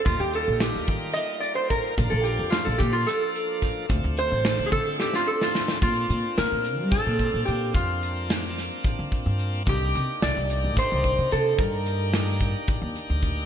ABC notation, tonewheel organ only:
X:1
M:7/8
L:1/8
Q:1/4=109
K:Bb
V:1 name="Tonewheel organ"
[G,B,EF]6- [G,B,EF] | [F,B,DF]6- [F,B,DF] | [A,CDF]6- [A,CDF] | [B,CDF]6- [B,CDF]- |
[B,CDF]6- [B,CDF] | [B,DEG]6- [B,DEG]- | [B,DEG]6- [B,DEG] |]